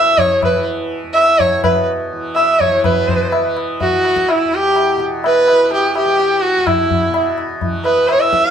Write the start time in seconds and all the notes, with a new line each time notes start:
Already playing: E2 B2 E3 E5
0.18 C#5, tabla tin, tabla ge
0.43 B4, tabla na, tabla ge
0.50 E3
1.03 E2
1.14 E5, tabla na
1.39 C#5, tabla tin, tabla ge
1.58 B2
1.64 B4, tabla na, tabla ge
2.13 E3
2.35 E5, tabla na
2.60 C#5, tabla tin, tabla ge
2.67 E3
2.84 B2 B4, tabla na, tabla ge
3.08 tabla ge
3.32 tabla na
3.39 E3
3.57 tabla na
3.81 F#4, tabla tin, tabla ge
3.91 E3
4.04 tabla na
4.16 tabla ke
4.29 E4, tabla na
4.45 E2
4.52 G4, tabla te
4.76 tabla na
4.97 B2, tabla te
5.24 B4, tabla na
5.48 E3, tabla na
5.71 G4, tabla tin
5.95 G4, tabla na
6.05 E3
6.20 tabla te
6.43 F#4, tabla te
6.57 E2
6.67 E4, tabla na, tabla ge
6.91 tabla ge
7.09 B2
7.14 tabla na
7.38 tabla na
7.61 E3, tabla tin, tabla ge
7.85 B4, tabla na
8.08 C#5, tabla na
8.15 E3
8.20 E5
8.33 tabla ke
8.45 tabla te